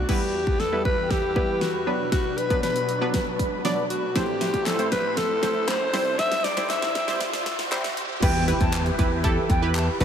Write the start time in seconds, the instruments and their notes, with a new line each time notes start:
Already playing: alto saxophone F#4
0.09 supersaw synth E2 E3 G4 B4, synth pluck G3 B3 E4 B4, alto saxophone G4, kick, snare, crash, riser
0.47 kick
0.60 alto saxophone A4, snare
0.72 synth pluck G3 B3 E4 B4
0.85 alto saxophone B4, kick
1.10 alto saxophone G4, kick, snare
1.36 synth pluck G3 B3 E4 B4, kick
1.61 alto saxophone F#4, snare
1.87 supersaw synth B2 F#3 D4, synth pluck F#3 B3 D4 B4
2.12 alto saxophone F#4, kick, snare, closed hi-hat
2.38 alto saxophone B4, closed hi-hat
2.50 synth pluck F#3 B3 D4 B4, kick, closed hi-hat
2.63 alto saxophone B4, snare, closed hi-hat
2.76 closed hi-hat
2.89 closed hi-hat
3.01 synth pluck F#3 B3 D4 B4
3.14 kick, snare, closed hi-hat
3.39 kick, closed hi-hat
3.65 synth pluck F#3 B3 D4 D5, snare, closed hi-hat
3.90 alto saxophone F#4, closed hi-hat
4.15 supersaw synth A2 A3 E4 C5, synth pluck A3 C4 E4 C5, alto saxophone G4, kick, snare, closed hi-hat
4.41 snare, closed hi-hat
4.54 kick, closed hi-hat
4.66 alto saxophone A4, snare, clap, closed hi-hat
4.79 synth pluck A3 C4 E4 C5, closed hi-hat
4.92 alto saxophone B4, kick, snare, closed hi-hat
5.17 alto saxophone A4, kick, snare, closed hi-hat
5.42 synth pluck A3 C4 E4 C5, kick, snare, closed hi-hat
5.68 alto saxophone C5, snare, clap, closed hi-hat
5.93 supersaw synth C3 G3 E4 C5, synth pluck G3 C4 E4 C5, snare, open hi-hat
6.19 alto saxophone E5, kick, snare, closed hi-hat
6.32 snare
6.44 alto saxophone D5, snare, closed hi-hat
6.57 synth pluck G3 C4 E4 C5, kick, snare, closed hi-hat
6.70 alto saxophone E5, snare, clap, closed hi-hat
6.82 snare, closed hi-hat
6.95 kick, snare, closed hi-hat
7.08 synth pluck G3 C4 E4 C5, snare
7.20 kick, snare, closed hi-hat
7.33 snare
7.46 kick, snare, closed hi-hat
7.59 snare
7.71 synth pluck G3 C4 E4 C5, snare, clap, closed hi-hat
7.84 snare
7.97 closed hi-hat
8.22 slap bass E2, supersaw synth E3 E4 G4 B4, synth pluck E4 G4 B4, flute G5, kick, closed hi-hat, crash, impact
8.47 synth pluck E4 G4 B4, closed hi-hat
8.61 slap bass E2, flute A5, kick, closed hi-hat
8.73 clap, closed hi-hat
8.86 closed hi-hat
8.98 slap bass E2, synth pluck E4 G4 B4, flute B5, kick, closed hi-hat
9.24 synth pluck E4 G4 A4, kick, closed hi-hat
9.50 slap bass E2, flute G5, kick, closed hi-hat
9.62 synth pluck E4 G4 B4
9.75 flute A5, clap, closed hi-hat
10.00 slap bass B1, supersaw synth B3 D4 F#4, synth pluck D4 F#4 B4, flute B5, open hi-hat